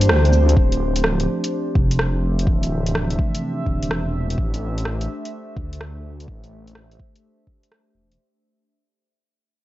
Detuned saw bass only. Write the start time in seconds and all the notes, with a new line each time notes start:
Already playing: G2
0.09 D2
0.57 D1
1.75 F1
2.47 D1
3.66 D1
3.90 E1
4.37 A1
5.56 D2
6.28 A1
7.95 E1